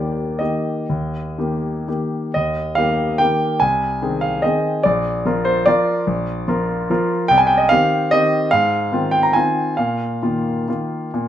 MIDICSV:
0, 0, Header, 1, 2, 480
1, 0, Start_track
1, 0, Key_signature, -3, "major"
1, 0, Tempo, 489796
1, 868, Time_signature, 3, 2, 24, 8
1, 2295, Tempo, 428571
1, 3255, Tempo, 410678
1, 7575, Tempo, 402685
1, 9975, Tempo, 433526
1, 11415, Tempo, 456621
1, 12542, End_track
2, 0, Start_track
2, 0, Title_t, "Grand piano"
2, 0, Program_c, 0, 0
2, 0, Control_c, 0, 64, 127
2, 0, Note_on_c, 0, 39, 39
2, 0, Note_on_c, 0, 51, 31
2, 0, Note_on_c, 0, 58, 30
2, 0, Note_on_c, 0, 67, 31
2, 0, Note_on_c, 0, 74, 65
2, 352, Note_off_c, 0, 51, 0
2, 353, Note_off_c, 0, 58, 0
2, 355, Note_off_c, 0, 67, 0
2, 379, Note_on_c, 0, 75, 49
2, 381, Note_off_c, 0, 74, 0
2, 396, Note_on_c, 0, 51, 31
2, 398, Note_on_c, 0, 58, 28
2, 402, Note_on_c, 0, 67, 32
2, 408, Control_c, 0, 64, 0
2, 416, Note_off_c, 0, 39, 0
2, 832, Note_off_c, 0, 51, 0
2, 834, Note_off_c, 0, 58, 0
2, 836, Note_off_c, 0, 67, 0
2, 877, Note_on_c, 0, 39, 38
2, 1100, Control_c, 0, 64, 127
2, 1334, Note_off_c, 0, 39, 0
2, 1356, Note_on_c, 0, 51, 31
2, 1359, Note_on_c, 0, 58, 31
2, 1364, Note_on_c, 0, 67, 30
2, 1799, Note_off_c, 0, 51, 0
2, 1801, Note_off_c, 0, 58, 0
2, 1803, Note_off_c, 0, 67, 0
2, 1828, Note_off_c, 0, 75, 0
2, 1842, Note_on_c, 0, 51, 29
2, 1846, Note_on_c, 0, 67, 33
2, 1847, Control_c, 0, 64, 0
2, 1848, Note_on_c, 0, 58, 27
2, 2260, Note_off_c, 0, 51, 0
2, 2262, Note_off_c, 0, 67, 0
2, 2263, Note_off_c, 0, 58, 0
2, 2294, Note_on_c, 0, 75, 65
2, 2314, Note_on_c, 0, 39, 40
2, 2489, Control_c, 0, 64, 127
2, 2755, Note_on_c, 0, 77, 78
2, 2766, Note_off_c, 0, 39, 0
2, 2770, Note_off_c, 0, 75, 0
2, 2776, Note_on_c, 0, 51, 37
2, 2779, Note_on_c, 0, 58, 36
2, 2785, Note_on_c, 0, 67, 39
2, 3213, Note_off_c, 0, 51, 0
2, 3215, Note_off_c, 0, 58, 0
2, 3218, Note_off_c, 0, 67, 0
2, 3237, Note_on_c, 0, 79, 75
2, 3248, Note_off_c, 0, 77, 0
2, 3254, Note_on_c, 0, 51, 33
2, 3262, Note_on_c, 0, 58, 35
2, 3266, Note_on_c, 0, 67, 39
2, 3273, Control_c, 0, 64, 0
2, 3689, Note_off_c, 0, 51, 0
2, 3693, Note_off_c, 0, 58, 0
2, 3696, Note_off_c, 0, 67, 0
2, 3720, Note_on_c, 0, 80, 70
2, 3727, Note_off_c, 0, 79, 0
2, 3736, Note_on_c, 0, 36, 49
2, 3950, Control_c, 0, 64, 127
2, 4189, Note_off_c, 0, 36, 0
2, 4216, Note_on_c, 0, 51, 36
2, 4217, Note_on_c, 0, 60, 36
2, 4224, Note_on_c, 0, 68, 40
2, 4436, Note_off_c, 0, 80, 0
2, 4438, Note_on_c, 0, 77, 64
2, 4652, Note_off_c, 0, 51, 0
2, 4652, Note_off_c, 0, 60, 0
2, 4656, Note_off_c, 0, 68, 0
2, 4684, Note_on_c, 0, 75, 67
2, 4689, Note_off_c, 0, 77, 0
2, 4701, Control_c, 0, 64, 0
2, 4706, Note_on_c, 0, 51, 37
2, 4714, Note_on_c, 0, 60, 37
2, 4719, Note_on_c, 0, 68, 42
2, 5136, Note_off_c, 0, 51, 0
2, 5140, Note_off_c, 0, 60, 0
2, 5143, Note_off_c, 0, 68, 0
2, 5166, Note_on_c, 0, 74, 71
2, 5172, Note_off_c, 0, 75, 0
2, 5190, Note_on_c, 0, 34, 52
2, 5367, Control_c, 0, 64, 127
2, 5643, Note_off_c, 0, 34, 0
2, 5657, Note_on_c, 0, 53, 45
2, 5665, Note_on_c, 0, 65, 46
2, 5667, Note_on_c, 0, 70, 48
2, 5884, Note_on_c, 0, 72, 72
2, 5887, Note_off_c, 0, 74, 0
2, 6090, Note_off_c, 0, 53, 0
2, 6094, Note_off_c, 0, 65, 0
2, 6095, Note_off_c, 0, 70, 0
2, 6127, Note_on_c, 0, 74, 84
2, 6129, Note_off_c, 0, 72, 0
2, 6143, Note_on_c, 0, 53, 44
2, 6144, Control_c, 0, 64, 0
2, 6148, Note_on_c, 0, 65, 44
2, 6154, Note_on_c, 0, 70, 47
2, 6564, Note_off_c, 0, 53, 0
2, 6567, Note_off_c, 0, 65, 0
2, 6570, Note_off_c, 0, 70, 0
2, 6611, Note_on_c, 0, 34, 53
2, 6812, Control_c, 0, 64, 127
2, 7066, Note_off_c, 0, 34, 0
2, 7086, Note_on_c, 0, 53, 45
2, 7090, Note_on_c, 0, 65, 46
2, 7099, Note_on_c, 0, 70, 48
2, 7533, Note_off_c, 0, 53, 0
2, 7535, Note_off_c, 0, 65, 0
2, 7540, Note_off_c, 0, 70, 0
2, 7581, Note_on_c, 0, 53, 46
2, 7587, Control_c, 0, 64, 0
2, 7587, Note_on_c, 0, 65, 48
2, 7588, Note_on_c, 0, 70, 51
2, 7819, Note_off_c, 0, 74, 0
2, 8010, Note_off_c, 0, 53, 0
2, 8013, Note_off_c, 0, 65, 0
2, 8013, Note_off_c, 0, 70, 0
2, 8038, Note_on_c, 0, 79, 94
2, 8065, Note_on_c, 0, 36, 58
2, 8149, Note_on_c, 0, 80, 70
2, 8161, Note_off_c, 0, 79, 0
2, 8250, Control_c, 0, 64, 127
2, 8258, Note_on_c, 0, 79, 68
2, 8276, Note_off_c, 0, 80, 0
2, 8385, Note_on_c, 0, 75, 60
2, 8392, Note_off_c, 0, 79, 0
2, 8518, Note_off_c, 0, 75, 0
2, 8519, Note_off_c, 0, 36, 0
2, 8522, Note_on_c, 0, 77, 96
2, 8546, Control_c, 0, 64, 0
2, 8547, Note_on_c, 0, 51, 49
2, 8550, Note_on_c, 0, 60, 43
2, 8555, Note_on_c, 0, 67, 47
2, 8991, Note_off_c, 0, 51, 0
2, 8993, Note_off_c, 0, 60, 0
2, 8995, Note_off_c, 0, 67, 0
2, 9024, Note_on_c, 0, 75, 92
2, 9026, Note_off_c, 0, 77, 0
2, 9042, Note_on_c, 0, 51, 43
2, 9046, Note_on_c, 0, 60, 43
2, 9050, Note_on_c, 0, 67, 47
2, 9460, Note_off_c, 0, 51, 0
2, 9463, Note_off_c, 0, 60, 0
2, 9465, Note_off_c, 0, 67, 0
2, 9498, Note_off_c, 0, 75, 0
2, 9499, Note_on_c, 0, 77, 92
2, 9523, Note_on_c, 0, 44, 52
2, 9690, Control_c, 0, 64, 127
2, 9973, Note_off_c, 0, 44, 0
2, 9988, Note_on_c, 0, 51, 37
2, 9994, Note_on_c, 0, 60, 43
2, 10000, Note_on_c, 0, 65, 42
2, 10202, Note_on_c, 0, 79, 74
2, 10214, Note_off_c, 0, 77, 0
2, 10330, Note_off_c, 0, 79, 0
2, 10330, Note_on_c, 0, 82, 68
2, 10419, Note_off_c, 0, 51, 0
2, 10422, Note_off_c, 0, 60, 0
2, 10425, Note_off_c, 0, 65, 0
2, 10445, Note_on_c, 0, 80, 70
2, 10454, Note_off_c, 0, 82, 0
2, 10461, Note_on_c, 0, 51, 34
2, 10466, Control_c, 0, 64, 0
2, 10467, Note_on_c, 0, 60, 39
2, 10474, Note_on_c, 0, 65, 44
2, 10887, Note_off_c, 0, 51, 0
2, 10890, Note_off_c, 0, 60, 0
2, 10893, Note_off_c, 0, 65, 0
2, 10923, Note_off_c, 0, 80, 0
2, 10928, Note_on_c, 0, 77, 63
2, 10946, Note_on_c, 0, 46, 46
2, 11128, Control_c, 0, 64, 127
2, 11410, Note_off_c, 0, 46, 0
2, 11432, Note_on_c, 0, 58, 35
2, 11433, Note_on_c, 0, 51, 32
2, 11435, Note_on_c, 0, 65, 38
2, 11870, Note_off_c, 0, 51, 0
2, 11870, Note_off_c, 0, 58, 0
2, 11872, Note_off_c, 0, 65, 0
2, 11910, Note_on_c, 0, 51, 33
2, 11918, Control_c, 0, 64, 0
2, 11918, Note_on_c, 0, 58, 31
2, 11924, Note_on_c, 0, 65, 35
2, 12343, Note_off_c, 0, 51, 0
2, 12347, Note_off_c, 0, 58, 0
2, 12350, Note_off_c, 0, 65, 0
2, 12391, Note_on_c, 0, 46, 44
2, 12542, Note_off_c, 0, 46, 0
2, 12542, Note_off_c, 0, 77, 0
2, 12542, End_track
0, 0, End_of_file